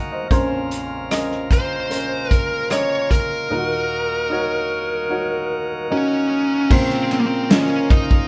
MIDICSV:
0, 0, Header, 1, 6, 480
1, 0, Start_track
1, 0, Key_signature, -5, "minor"
1, 0, Tempo, 800000
1, 183, Time_signature, 4, 2, 24, 8
1, 4967, End_track
2, 0, Start_track
2, 0, Title_t, "Lead electric guitar"
2, 0, Program_c, 0, 29
2, 915, Note_on_c, 0, 72, 86
2, 1389, Note_off_c, 0, 72, 0
2, 1389, Note_on_c, 0, 70, 86
2, 1605, Note_off_c, 0, 70, 0
2, 1629, Note_on_c, 0, 73, 90
2, 1850, Note_off_c, 0, 73, 0
2, 1867, Note_on_c, 0, 70, 74
2, 3521, Note_off_c, 0, 70, 0
2, 3552, Note_on_c, 0, 61, 80
2, 3555, Note_on_c, 0, 73, 49
2, 4004, Note_off_c, 0, 73, 0
2, 4032, Note_off_c, 0, 61, 0
2, 4034, Note_on_c, 0, 60, 88
2, 4038, Note_on_c, 0, 72, 67
2, 4253, Note_off_c, 0, 60, 0
2, 4253, Note_off_c, 0, 72, 0
2, 4278, Note_on_c, 0, 60, 81
2, 4281, Note_on_c, 0, 72, 55
2, 4310, Note_off_c, 0, 60, 0
2, 4310, Note_on_c, 0, 58, 70
2, 4311, Note_off_c, 0, 72, 0
2, 4349, Note_off_c, 0, 58, 0
2, 4355, Note_on_c, 0, 60, 83
2, 4358, Note_on_c, 0, 72, 57
2, 4497, Note_off_c, 0, 60, 0
2, 4497, Note_off_c, 0, 72, 0
2, 4505, Note_on_c, 0, 61, 85
2, 4508, Note_on_c, 0, 73, 66
2, 4728, Note_off_c, 0, 73, 0
2, 4739, Note_on_c, 0, 63, 94
2, 4744, Note_on_c, 0, 75, 61
2, 4752, Note_off_c, 0, 61, 0
2, 4965, Note_off_c, 0, 75, 0
2, 4967, Note_off_c, 0, 63, 0
2, 4967, End_track
3, 0, Start_track
3, 0, Title_t, "Grand piano"
3, 0, Program_c, 1, 0
3, 0, Control_c, 1, 64, 127
3, 0, Note_on_c, 1, 39, 48
3, 0, Note_on_c, 1, 46, 49
3, 0, Note_on_c, 1, 63, 70
3, 0, Note_on_c, 1, 66, 66
3, 0, Note_on_c, 1, 70, 75
3, 0, Note_on_c, 1, 75, 51
3, 0, Note_on_c, 1, 77, 45
3, 0, Note_on_c, 1, 78, 59
3, 0, Note_on_c, 1, 80, 52
3, 72, Note_on_c, 1, 72, 49
3, 73, Note_off_c, 1, 75, 0
3, 73, Note_on_c, 1, 75, 56
3, 160, Note_off_c, 1, 39, 0
3, 160, Note_off_c, 1, 46, 0
3, 182, Note_off_c, 1, 72, 0
3, 185, Note_on_c, 1, 61, 90
3, 187, Note_on_c, 1, 34, 59
3, 188, Note_off_c, 1, 70, 0
3, 188, Note_on_c, 1, 70, 83
3, 191, Control_c, 1, 64, 0
3, 191, Note_on_c, 1, 41, 60
3, 191, Note_on_c, 1, 72, 97
3, 192, Note_off_c, 1, 63, 0
3, 192, Note_off_c, 1, 77, 0
3, 194, Note_off_c, 1, 66, 0
3, 194, Note_off_c, 1, 78, 0
3, 196, Note_off_c, 1, 80, 0
3, 296, Note_off_c, 1, 75, 0
3, 298, Control_c, 1, 64, 127
3, 640, Note_off_c, 1, 61, 0
3, 641, Note_off_c, 1, 70, 0
3, 643, Note_off_c, 1, 72, 0
3, 664, Note_on_c, 1, 61, 73
3, 666, Note_on_c, 1, 70, 67
3, 669, Note_on_c, 1, 75, 84
3, 1119, Note_off_c, 1, 61, 0
3, 1121, Note_off_c, 1, 70, 0
3, 1122, Note_off_c, 1, 75, 0
3, 1138, Note_on_c, 1, 61, 63
3, 1144, Note_on_c, 1, 70, 56
3, 1148, Note_on_c, 1, 72, 70
3, 1596, Note_off_c, 1, 61, 0
3, 1599, Note_off_c, 1, 70, 0
3, 1601, Note_off_c, 1, 72, 0
3, 1616, Note_on_c, 1, 61, 59
3, 1620, Note_on_c, 1, 70, 58
3, 1627, Note_on_c, 1, 75, 69
3, 2075, Note_off_c, 1, 61, 0
3, 2077, Note_off_c, 1, 70, 0
3, 2081, Note_off_c, 1, 34, 0
3, 2081, Note_off_c, 1, 75, 0
3, 2083, Note_off_c, 1, 41, 0
3, 2100, Note_on_c, 1, 63, 76
3, 2103, Note_on_c, 1, 39, 51
3, 2105, Note_on_c, 1, 46, 50
3, 2105, Note_on_c, 1, 65, 54
3, 2108, Note_on_c, 1, 70, 87
3, 2112, Control_c, 1, 64, 0
3, 2142, Note_on_c, 1, 66, 72
3, 2143, Note_off_c, 1, 65, 0
3, 2224, Control_c, 1, 64, 127
3, 2557, Note_off_c, 1, 63, 0
3, 2562, Note_off_c, 1, 70, 0
3, 2577, Note_off_c, 1, 66, 0
3, 2578, Note_on_c, 1, 63, 79
3, 2586, Note_on_c, 1, 66, 68
3, 2591, Note_on_c, 1, 73, 87
3, 3036, Note_off_c, 1, 63, 0
3, 3041, Note_off_c, 1, 66, 0
3, 3043, Note_off_c, 1, 73, 0
3, 3056, Note_on_c, 1, 63, 77
3, 3062, Note_on_c, 1, 66, 71
3, 3067, Note_on_c, 1, 73, 80
3, 3515, Note_off_c, 1, 63, 0
3, 3518, Note_off_c, 1, 66, 0
3, 3521, Note_off_c, 1, 73, 0
3, 3541, Note_on_c, 1, 63, 73
3, 3545, Note_on_c, 1, 66, 65
3, 3549, Note_on_c, 1, 70, 80
3, 3998, Note_off_c, 1, 63, 0
3, 3999, Note_off_c, 1, 39, 0
3, 4000, Note_off_c, 1, 46, 0
3, 4000, Note_off_c, 1, 66, 0
3, 4002, Note_off_c, 1, 70, 0
3, 4019, Note_on_c, 1, 49, 64
3, 4021, Note_on_c, 1, 46, 61
3, 4023, Note_on_c, 1, 53, 58
3, 4023, Note_on_c, 1, 65, 60
3, 4026, Note_on_c, 1, 70, 60
3, 4028, Note_on_c, 1, 72, 77
3, 4031, Control_c, 1, 64, 0
3, 4145, Control_c, 1, 64, 127
3, 4477, Note_off_c, 1, 49, 0
3, 4479, Note_off_c, 1, 65, 0
3, 4481, Note_off_c, 1, 70, 0
3, 4481, Note_off_c, 1, 72, 0
3, 4498, Note_on_c, 1, 61, 69
3, 4503, Note_on_c, 1, 65, 67
3, 4507, Note_on_c, 1, 70, 62
3, 4509, Note_on_c, 1, 75, 75
3, 4957, Note_off_c, 1, 61, 0
3, 4959, Note_off_c, 1, 65, 0
3, 4961, Note_off_c, 1, 70, 0
3, 4962, Note_off_c, 1, 75, 0
3, 4967, Note_off_c, 1, 46, 0
3, 4967, Note_off_c, 1, 53, 0
3, 4967, End_track
4, 0, Start_track
4, 0, Title_t, "Tonewheel organ"
4, 0, Program_c, 2, 16
4, 0, Note_on_c, 2, 51, 53
4, 0, Note_on_c, 2, 58, 44
4, 0, Note_on_c, 2, 66, 49
4, 0, Note_on_c, 2, 70, 64
4, 159, Note_off_c, 2, 58, 0
4, 165, Note_off_c, 2, 51, 0
4, 167, Note_off_c, 2, 66, 0
4, 167, Note_off_c, 2, 70, 0
4, 189, Note_on_c, 2, 58, 50
4, 193, Note_on_c, 2, 49, 54
4, 193, Note_on_c, 2, 65, 52
4, 194, Note_on_c, 2, 70, 63
4, 2089, Note_off_c, 2, 49, 0
4, 2089, Note_off_c, 2, 65, 0
4, 2089, Note_off_c, 2, 70, 0
4, 2109, Note_on_c, 2, 66, 51
4, 2109, Note_on_c, 2, 70, 62
4, 2111, Note_on_c, 2, 51, 55
4, 4002, Note_off_c, 2, 58, 0
4, 4006, Note_off_c, 2, 70, 0
4, 4007, Note_off_c, 2, 66, 0
4, 4008, Note_off_c, 2, 51, 0
4, 4014, Note_on_c, 2, 70, 67
4, 4016, Note_on_c, 2, 58, 57
4, 4017, Note_on_c, 2, 49, 65
4, 4018, Note_on_c, 2, 65, 55
4, 4967, Note_off_c, 2, 49, 0
4, 4967, Note_off_c, 2, 58, 0
4, 4967, Note_off_c, 2, 65, 0
4, 4967, Note_off_c, 2, 70, 0
4, 4967, End_track
5, 0, Start_track
5, 0, Title_t, "French horn section"
5, 0, Program_c, 3, 60
5, 4024, Note_on_c, 3, 58, 85
5, 4026, Note_on_c, 3, 46, 81
5, 4967, Note_off_c, 3, 46, 0
5, 4967, Note_off_c, 3, 58, 0
5, 4967, End_track
6, 0, Start_track
6, 0, Title_t, "Drums"
6, 185, Note_on_c, 9, 36, 83
6, 186, Note_on_c, 9, 42, 68
6, 245, Note_off_c, 9, 36, 0
6, 246, Note_off_c, 9, 42, 0
6, 428, Note_on_c, 9, 42, 68
6, 488, Note_off_c, 9, 42, 0
6, 666, Note_on_c, 9, 42, 87
6, 669, Note_on_c, 9, 37, 98
6, 726, Note_off_c, 9, 42, 0
6, 729, Note_off_c, 9, 37, 0
6, 790, Note_on_c, 9, 37, 27
6, 850, Note_off_c, 9, 37, 0
6, 904, Note_on_c, 9, 36, 87
6, 906, Note_on_c, 9, 42, 57
6, 964, Note_off_c, 9, 36, 0
6, 966, Note_off_c, 9, 42, 0
6, 1146, Note_on_c, 9, 42, 74
6, 1206, Note_off_c, 9, 42, 0
6, 1385, Note_on_c, 9, 42, 70
6, 1386, Note_on_c, 9, 36, 77
6, 1445, Note_off_c, 9, 42, 0
6, 1446, Note_off_c, 9, 36, 0
6, 1621, Note_on_c, 9, 42, 68
6, 1626, Note_on_c, 9, 37, 95
6, 1681, Note_off_c, 9, 42, 0
6, 1686, Note_off_c, 9, 37, 0
6, 1864, Note_on_c, 9, 36, 67
6, 1866, Note_on_c, 9, 42, 59
6, 1924, Note_off_c, 9, 36, 0
6, 1926, Note_off_c, 9, 42, 0
6, 4024, Note_on_c, 9, 36, 95
6, 4024, Note_on_c, 9, 49, 95
6, 4084, Note_off_c, 9, 36, 0
6, 4084, Note_off_c, 9, 49, 0
6, 4146, Note_on_c, 9, 51, 48
6, 4206, Note_off_c, 9, 51, 0
6, 4266, Note_on_c, 9, 51, 60
6, 4326, Note_off_c, 9, 51, 0
6, 4503, Note_on_c, 9, 51, 90
6, 4506, Note_on_c, 9, 38, 115
6, 4563, Note_off_c, 9, 51, 0
6, 4566, Note_off_c, 9, 38, 0
6, 4743, Note_on_c, 9, 36, 103
6, 4744, Note_on_c, 9, 51, 55
6, 4803, Note_off_c, 9, 36, 0
6, 4804, Note_off_c, 9, 51, 0
6, 4864, Note_on_c, 9, 36, 87
6, 4924, Note_off_c, 9, 36, 0
6, 4967, End_track
0, 0, End_of_file